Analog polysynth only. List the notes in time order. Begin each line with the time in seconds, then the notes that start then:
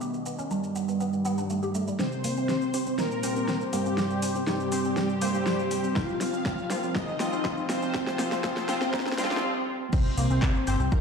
2.74 C4 G4 C5
3.23 C4 G4 C5
4.72 C4 G4 C5
5.22 C4 G4 C5
6.70 F3 C4 F4
7.20 F3 C4 F4
8.69 F3 C4 F4
9.18 F3 C4 F4
10.67 C4 G4 C5